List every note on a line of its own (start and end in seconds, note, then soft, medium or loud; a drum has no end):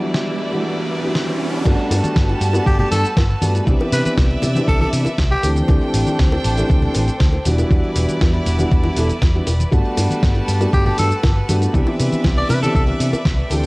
0.00 0.49 E3 medium
0.00 0.49 G3 medium
0.00 0.49 B3 medium
0.00 0.50 D4 medium
0.00 1.63 E4 medium
0.00 0.50 F#4 medium
0.00 1.63 B4 medium
0.00 1.63 D5 medium
0.00 riser medium
0.14 snare loud
0.52 1.00 E3 medium
0.52 1.00 G3 medium
0.52 1.00 B3 medium
0.52 1.00 D4 medium
0.52 1.00 F#4 medium
1.02 1.62 E3 medium
1.02 1.63 G3 medium
1.02 1.63 B3 medium
1.02 1.63 D4 medium
1.02 1.63 F#4 medium
1.15 snare loud
1.65 1.74 G1 loud
1.65 2.51 G3 medium
1.65 3.65 G3 medium
1.65 2.51 A3 medium
1.65 2.51 B3 medium
1.65 2.52 D4 medium
1.65 3.65 F#4 medium
1.65 2.52 F#4 loud
1.65 5.40 B4 medium
1.65 3.65 A5 medium
1.65 kick loud
1.65 closed hi-hat medium
1.65 crash loud
1.65 high bongo medium
1.65 shaker soft
1.79 closed hi-hat soft
1.91 1.99 G2 loud
1.91 open hi-hat loud
1.91 high bongo medium
1.91 shaker medium
2.04 muted picked electric bass stroke soft
2.04 closed hi-hat medium
2.04 high conga medium
2.04 shaker soft
2.16 2.33 G1 medium
2.16 kick loud
2.16 snare loud
2.16 closed hi-hat medium
2.16 shaker soft
2.29 closed hi-hat soft
2.29 high bongo medium
2.41 2.58 G2 loud
2.41 open hi-hat loud
2.41 shaker medium
2.53 3.01 G3 medium
2.53 3.01 A3 medium
2.53 3.02 B3 medium
2.53 3.02 D4 medium
2.53 3.02 F#4 medium
2.53 closed hi-hat medium
2.53 high bongo medium
2.53 shaker soft
2.66 2.83 G1 medium
2.66 2.75 G4 medium
2.66 kick loud
2.66 closed hi-hat medium
2.66 shaker soft
2.79 2.87 G4 medium
2.79 closed hi-hat soft
2.79 low conga medium
2.91 3.04 G2 medium
2.91 3.11 A4 medium
2.91 open hi-hat loud
2.91 high bongo medium
2.91 high conga medium
2.91 shaker medium
3.04 muted picked electric bass stroke soft
3.04 closed hi-hat medium
3.04 shaker soft
3.17 3.34 G1 medium
3.17 kick loud
3.17 snare loud
3.17 closed hi-hat medium
3.17 high bongo medium
3.17 shaker soft
3.30 closed hi-hat soft
3.42 3.59 G2 medium
3.42 3.64 G3 medium
3.42 3.64 A3 medium
3.42 3.64 B3 medium
3.42 3.65 D4 medium
3.42 3.65 F#4 medium
3.42 open hi-hat loud
3.42 high conga medium
3.42 shaker medium
3.55 closed hi-hat medium
3.55 high bongo medium
3.55 shaker soft
3.67 3.76 C2 loud
3.67 4.53 E3 medium
3.67 4.53 B3 medium
3.67 4.53 C4 medium
3.67 4.53 D4 medium
3.67 4.54 G4 loud
3.67 5.42 D5 medium
3.67 5.42 E5 medium
3.67 kick loud
3.67 closed hi-hat medium
3.67 shaker soft
3.80 closed hi-hat soft
3.80 high bongo medium
3.92 4.01 C3 loud
3.92 4.01 B4 medium
3.92 open hi-hat loud
3.92 shaker medium
4.05 4.13 B4 medium
4.05 muted picked electric bass stroke soft
4.05 closed hi-hat medium
4.05 high conga medium
4.05 shaker soft
4.17 4.34 C2 medium
4.17 kick loud
4.17 snare loud
4.17 closed hi-hat medium
4.17 high bongo medium
4.17 shaker soft
4.31 closed hi-hat soft
4.42 4.60 C3 loud
4.42 open hi-hat loud
4.42 high bongo medium
4.42 low conga loud
4.42 shaker medium
4.55 5.03 E3 medium
4.55 5.03 B3 medium
4.55 5.03 C4 medium
4.55 5.03 D4 medium
4.55 5.04 G4 medium
4.55 closed hi-hat medium
4.55 high conga medium
4.55 shaker soft
4.68 4.85 C2 medium
4.68 4.76 A4 medium
4.68 kick loud
4.68 closed hi-hat medium
4.68 shaker soft
4.80 4.89 A4 medium
4.80 closed hi-hat soft
4.80 high bongo medium
4.80 high conga medium
4.93 5.05 C3 medium
4.93 open hi-hat loud
4.93 shaker medium
5.05 muted picked electric bass stroke soft
5.05 closed hi-hat medium
5.05 high bongo medium
5.05 shaker soft
5.18 5.35 C2 medium
5.18 kick loud
5.18 snare loud
5.18 closed hi-hat medium
5.18 shaker soft
5.31 5.49 G4 loud
5.31 closed hi-hat soft
5.43 5.60 D2 medium
5.43 5.66 E3 medium
5.43 5.66 A3 medium
5.43 5.66 C4 medium
5.43 7.43 D4 medium
5.43 5.66 D4 medium
5.43 5.66 G4 medium
5.43 7.43 A4 medium
5.43 7.43 C5 medium
5.43 7.44 G5 medium
5.43 open hi-hat loud
5.43 high bongo medium
5.43 shaker medium
5.56 closed hi-hat medium
5.56 high conga medium
5.56 shaker soft
5.68 5.77 D2 loud
5.68 6.54 E3 medium
5.68 6.54 A3 medium
5.68 6.54 C4 medium
5.68 6.55 D4 medium
5.68 6.55 G4 loud
5.68 kick loud
5.68 closed hi-hat soft
5.68 high bongo medium
5.68 shaker soft
5.82 closed hi-hat soft
5.94 6.03 A1 loud
5.94 open hi-hat loud
5.94 shaker medium
6.07 closed hi-hat medium
6.07 high bongo soft
6.07 high conga medium
6.07 shaker soft
6.19 6.36 D2 medium
6.19 kick loud
6.19 snare loud
6.19 closed hi-hat medium
6.19 shaker soft
6.32 closed hi-hat soft
6.32 high bongo medium
6.44 6.61 A1 loud
6.44 open hi-hat loud
6.44 shaker medium
6.57 7.05 E3 medium
6.57 7.05 A3 medium
6.57 7.05 C4 medium
6.57 7.05 D4 medium
6.57 7.06 G4 medium
6.57 closed hi-hat medium
6.57 shaker soft
6.69 6.87 D2 medium
6.69 kick loud
6.69 closed hi-hat medium
6.69 high bongo soft
6.69 shaker soft
6.82 closed hi-hat soft
6.82 low conga medium
6.94 7.08 A1 medium
6.94 open hi-hat loud
6.94 high bongo medium
6.94 high conga medium
6.94 shaker medium
7.08 muted picked electric bass stroke soft
7.08 closed hi-hat medium
7.08 shaker soft
7.20 7.37 D2 medium
7.20 kick loud
7.20 snare loud
7.20 closed hi-hat soft
7.20 shaker soft
7.33 closed hi-hat soft
7.33 high bongo soft
7.45 7.62 E1 medium
7.45 7.68 E3 medium
7.45 7.68 G3 medium
7.45 7.68 B3 medium
7.45 7.68 D4 medium
7.45 9.71 E4 medium
7.45 7.68 F#4 medium
7.45 13.47 B4 medium
7.45 9.70 D5 medium
7.45 open hi-hat loud
7.45 high conga medium
7.45 shaker medium
7.58 closed hi-hat soft
7.58 high bongo medium
7.58 shaker soft
7.70 7.79 E2 loud
7.70 8.56 E3 medium
7.70 8.56 G3 medium
7.70 8.56 B3 medium
7.70 8.56 D4 medium
7.70 8.57 F#4 loud
7.70 kick loud
7.70 closed hi-hat soft
7.70 shaker soft
7.84 closed hi-hat soft
7.95 8.04 E1 loud
7.95 open hi-hat loud
7.95 high bongo soft
7.95 shaker medium
8.08 closed hi-hat medium
8.08 high conga medium
8.08 shaker soft
8.21 8.38 E2 medium
8.21 kick loud
8.21 snare loud
8.21 closed hi-hat soft
8.21 high bongo medium
8.21 shaker soft
8.34 closed hi-hat soft
8.45 8.63 E1 loud
8.45 open hi-hat loud
8.45 low conga medium
8.45 shaker medium
8.58 8.94 E3 medium
8.58 8.94 G3 medium
8.58 8.95 B3 medium
8.58 8.95 D4 medium
8.58 8.95 F#4 medium
8.58 closed hi-hat medium
8.58 high bongo medium
8.58 high conga medium
8.58 shaker soft
8.71 8.88 E2 medium
8.71 kick loud
8.71 closed hi-hat medium
8.71 shaker soft
8.83 closed hi-hat soft
8.83 high bongo medium
8.83 high conga medium
8.96 9.09 E1 medium
8.96 9.08 E3 loud
8.96 9.08 G3 medium
8.96 9.08 B3 medium
8.96 9.08 D4 medium
8.96 9.08 A4 loud
8.96 open hi-hat loud
8.96 shaker medium
9.09 muted picked electric bass stroke soft
9.09 closed hi-hat medium
9.09 shaker soft
9.22 9.39 E2 medium
9.22 kick loud
9.22 snare loud
9.22 closed hi-hat soft
9.22 high bongo medium
9.22 shaker soft
9.34 9.41 E3 medium
9.34 9.41 G3 medium
9.34 9.41 B3 medium
9.34 9.42 D4 medium
9.34 9.42 F#4 medium
9.34 closed hi-hat soft
9.47 9.64 E1 medium
9.47 open hi-hat loud
9.47 high bongo medium
9.47 shaker medium
9.60 closed hi-hat medium
9.60 high conga medium
9.60 shaker soft
9.71 9.81 G1 loud
9.71 10.57 G3 medium
9.71 11.72 G3 medium
9.71 10.58 A3 medium
9.71 10.58 B3 medium
9.71 10.58 D4 medium
9.71 11.72 F#4 medium
9.71 10.58 F#4 loud
9.71 11.72 A5 medium
9.71 kick loud
9.71 closed hi-hat soft
9.71 high bongo soft
9.71 shaker soft
9.85 closed hi-hat soft
9.97 10.06 G2 loud
9.97 open hi-hat loud
9.97 high bongo medium
9.97 shaker medium
10.10 muted picked electric bass stroke soft
10.10 closed hi-hat soft
10.10 high conga medium
10.10 shaker soft
10.23 10.39 G1 medium
10.23 kick loud
10.23 snare loud
10.23 closed hi-hat soft
10.23 shaker soft
10.35 closed hi-hat soft
10.35 high bongo soft
10.48 10.65 G2 loud
10.48 open hi-hat medium
10.48 shaker medium
10.60 11.08 G3 medium
10.60 11.08 A3 medium
10.60 11.08 B3 medium
10.60 11.08 D4 medium
10.60 11.08 F#4 medium
10.60 closed hi-hat medium
10.60 high bongo medium
10.60 shaker soft
10.73 10.90 G1 medium
10.73 10.82 G4 medium
10.73 kick loud
10.73 closed hi-hat soft
10.73 shaker soft
10.86 10.94 G4 medium
10.86 closed hi-hat soft
10.86 low conga medium
10.98 11.11 G2 medium
10.98 11.18 A4 medium
10.98 open hi-hat loud
10.98 high bongo soft
10.98 high conga medium
10.98 shaker medium
11.11 muted picked electric bass stroke soft
11.11 closed hi-hat soft
11.11 shaker soft
11.23 11.40 G1 medium
11.23 kick loud
11.23 snare loud
11.23 closed hi-hat medium
11.23 high bongo medium
11.23 shaker soft
11.36 closed hi-hat soft
11.49 11.66 G2 medium
11.49 11.71 G3 medium
11.49 11.71 A3 medium
11.49 11.71 B3 medium
11.49 11.72 D4 medium
11.49 11.72 F#4 medium
11.49 open hi-hat loud
11.49 high conga medium
11.49 shaker medium
11.62 closed hi-hat medium
11.62 high bongo soft
11.62 shaker soft
11.73 11.83 C2 medium
11.73 12.59 E3 loud
11.73 12.59 B3 medium
11.73 12.60 C4 medium
11.73 12.60 D4 medium
11.73 12.60 G4 loud
11.73 13.49 D5 medium
11.73 13.49 E5 loud
11.73 kick loud
11.73 closed hi-hat medium
11.73 shaker soft
11.87 closed hi-hat soft
11.87 high bongo medium
12.00 12.08 C3 loud
12.00 open hi-hat loud
12.00 shaker medium
12.12 muted picked electric bass stroke soft
12.12 closed hi-hat medium
12.12 high conga medium
12.12 shaker soft
12.24 12.41 C2 medium
12.24 kick loud
12.24 snare loud
12.24 closed hi-hat medium
12.24 high bongo medium
12.24 shaker soft
12.37 12.47 D5 medium
12.37 closed hi-hat soft
12.49 12.66 C3 loud
12.49 12.60 B4 medium
12.49 open hi-hat loud
12.49 high bongo medium
12.49 low conga medium
12.49 shaker medium
12.62 13.10 E3 medium
12.62 13.10 B3 medium
12.62 13.10 C4 medium
12.62 13.10 D4 medium
12.62 13.10 G4 medium
12.62 12.70 A4 medium
12.62 closed hi-hat medium
12.62 high conga medium
12.62 shaker soft
12.75 12.92 C2 medium
12.75 12.83 A4 medium
12.75 kick loud
12.75 closed hi-hat soft
12.75 shaker soft
12.87 closed hi-hat soft
12.87 high bongo soft
12.87 high conga medium
13.00 13.12 C3 medium
13.00 open hi-hat loud
13.00 shaker medium
13.13 muted picked electric bass stroke soft
13.13 closed hi-hat medium
13.13 high bongo medium
13.13 shaker soft
13.25 13.42 C2 medium
13.25 kick loud
13.25 snare loud
13.25 closed hi-hat medium
13.25 shaker soft
13.38 closed hi-hat soft
13.50 13.66 D2 medium
13.50 13.66 E3 medium
13.50 13.66 A3 medium
13.50 13.66 C4 medium
13.50 13.66 D4 medium
13.50 13.66 G4 medium
13.50 13.66 A4 medium
13.50 13.66 C5 medium
13.50 13.66 G5 loud
13.50 open hi-hat loud
13.50 high bongo soft
13.50 shaker medium